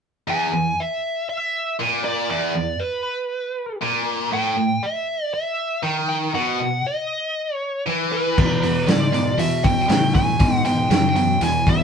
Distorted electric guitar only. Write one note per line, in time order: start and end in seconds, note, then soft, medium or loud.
0.28 0.52 E2 medium
0.53 0.73 E2 medium
1.79 2.29 A#2 medium
2.29 2.54 E2 medium
2.55 2.75 E2 medium
3.81 4.31 A#2 medium
4.31 4.56 A2 medium
4.57 4.77 A2 medium
5.83 6.33 D#3 medium
6.34 6.59 B2 medium
6.60 6.80 B2 medium
7.87 8.37 E3 medium
8.38 8.60 E2 medium
8.38 8.60 B2 medium
8.62 8.85 E2 medium
8.62 8.85 B2 medium
8.87 9.10 E2 medium
8.87 9.11 C#3 medium
9.13 9.36 E2 medium
9.13 9.36 B2 medium
9.38 9.61 E2 medium
9.38 9.61 B2 medium
9.64 9.87 E2 medium
9.64 9.87 B2 medium
9.88 10.11 E2 medium
9.88 10.12 C#3 medium
10.14 10.37 E2 medium
10.14 10.37 B2 medium
10.39 10.62 E2 medium
10.39 10.63 B2 medium
10.65 10.88 E2 medium
10.65 10.88 B2 medium
10.91 11.13 E2 medium
10.91 11.14 C#3 medium
11.16 11.39 E2 medium
11.16 11.39 B2 medium
11.41 11.64 E2 medium
11.41 11.64 B2 medium
11.67 11.83 E2 medium
11.67 11.83 B2 medium